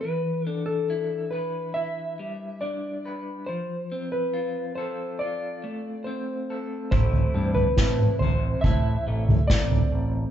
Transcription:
0.01 2.19 E3 soft
0.01 0.48 B4 soft
0.47 2.60 D4 soft
0.47 0.63 A4 soft
0.66 1.28 A4 soft
0.90 1.75 E4 soft
1.31 1.76 B4 soft
1.31 3.04 B4 soft
1.74 3.48 E4 soft
1.74 2.64 E5 medium
2.20 3.49 G3 soft
2.61 3.48 D4 soft
2.61 3.22 D5 medium
3.06 3.48 B4 soft
3.46 5.64 F3 soft
3.46 4.12 C5 medium
3.92 6.06 C4 soft
4.12 4.75 B4 medium
4.34 5.20 F4 soft
4.75 6.49 A4 soft
4.75 5.21 C5 medium
5.19 6.93 F4 soft
5.19 6.09 D5 medium
5.64 6.93 A3 soft
6.04 6.93 C4 soft
6.04 6.66 C5 soft
6.50 6.93 A4 soft
6.91 7.24 A1 medium
6.91 10.31 C3 soft
6.91 10.31 E3 soft
6.91 10.31 A3 soft
6.91 10.31 E4 medium
6.91 7.78 A4 medium
6.91 7.53 C5 medium
6.91 kick medium
6.91 floor tom medium
7.13 floor tom medium
7.34 7.66 G2 medium
7.34 9.49 C4 soft
7.55 8.19 B4 medium
7.55 floor tom medium
7.77 8.09 A2 medium
7.77 8.64 C4 medium
7.77 8.65 E4 medium
7.77 kick medium
7.77 snare medium
7.99 mid tom medium
8.19 8.53 A1 medium
8.19 8.65 C5 medium
8.19 10.31 C5 medium
8.19 floor tom medium
8.61 8.96 A2 medium
8.61 9.47 E5 medium
8.61 9.51 E5 medium
8.61 kick medium
8.61 floor tom medium
8.65 10.31 E4 medium
9.07 9.39 A1 medium
9.07 10.31 A3 soft
9.28 floor tom medium
9.28 mid tom medium
9.48 9.81 A1 medium
9.48 10.31 C4 soft
9.48 10.09 D5 medium
9.48 10.31 D5 medium
9.48 kick medium
9.48 snare medium
9.72 floor tom medium
9.92 10.24 A1 medium

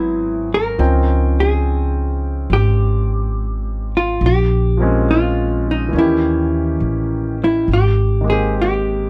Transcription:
0.00 0.75 G#1 medium
0.00 0.79 F#3 soft
0.00 0.79 B3 soft
0.00 0.78 C4 soft
0.00 0.49 E4 medium
0.00 0.80 E4 soft
0.00 0.80 G#4 soft
0.54 1.40 A#4 medium
0.78 2.45 C#2 medium
0.78 4.21 F3 soft
0.78 4.21 C4 soft
0.78 4.21 C#4 soft
0.78 4.21 D#4 soft
0.78 4.21 G5 soft
1.40 2.53 G#4 medium
2.50 4.17 G#1 medium
2.50 3.91 G4 medium
3.97 4.24 F4 medium
4.21 5.89 A#1 medium
4.26 5.12 G4 medium
4.77 5.93 F3 soft
4.77 5.90 A#3 soft
4.77 5.94 C4 soft
4.81 5.95 G#3 soft
4.81 5.93 C#4 soft
5.11 5.68 F4 medium
5.71 5.95 D#4 medium
5.89 7.65 E3 soft
5.89 7.66 A#3 soft
5.93 6.76 D#2 medium
5.93 7.69 D#3 soft
5.93 7.68 C#4 soft
5.99 7.37 E4 medium
5.99 7.70 G4 soft
6.80 7.63 A1 medium
7.44 7.68 E4 medium
7.68 9.08 G#1 medium
7.73 8.24 G4 medium
8.21 9.10 D#3 soft
8.21 9.10 G#3 soft
8.27 9.10 A#3 soft
8.27 9.10 C4 soft
8.27 8.54 G#4 medium
8.32 9.10 G4 soft
8.62 9.10 G4 medium

